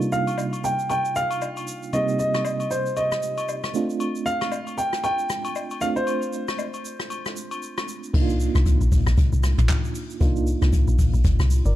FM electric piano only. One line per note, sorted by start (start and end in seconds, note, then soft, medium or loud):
0.00 1.89 C3 medium
0.00 1.89 G3 medium
0.00 1.90 A#3 medium
0.00 1.90 D4 medium
0.00 1.90 D#4 medium
0.00 1.90 F4 medium
1.93 3.71 C3 medium
1.93 3.71 G3 medium
1.93 3.71 A#3 medium
1.93 3.71 C4 medium
1.93 3.71 D#4 medium
1.93 3.72 G4 medium
3.74 5.77 A3 medium
3.74 5.77 C4 medium
3.74 5.78 D4 medium
3.74 5.78 F4 medium
5.81 7.84 A3 medium
5.81 7.84 C4 medium
5.81 7.85 D4 medium
5.81 7.85 F4 medium
8.14 10.17 A#3 medium
8.14 10.17 D4 medium
8.14 10.17 D#4 medium
8.14 8.22 E4 medium
8.22 10.21 F4 medium
10.20 11.76 A#3 medium
10.20 11.76 D4 medium
10.20 11.76 D#4 medium
10.20 11.76 F4 medium
11.66 11.76 A#4 medium
11.66 11.76 D5 medium